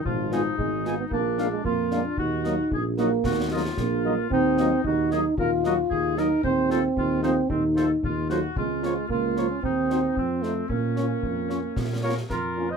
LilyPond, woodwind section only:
\new Staff \with { instrumentName = "Woodwind section" } { \time 2/4 \key ees \minor \tempo 4 = 113 f'8 ees'4. | d'4 f'4 | ges'4 aes'8 ges'8 | ges'8 f'4. |
\key bes \minor ees'4 ges'8 aes'8 | bes'8 ges'8 aes'8 bes'8 | c''8 a'8 f'8 ees'8 | c'8 a'8 f'8 ges'8 |
f'4 f'4 | ees'4 c'4 | des'2~ | des'8 bes'8 f'8. c''16 | }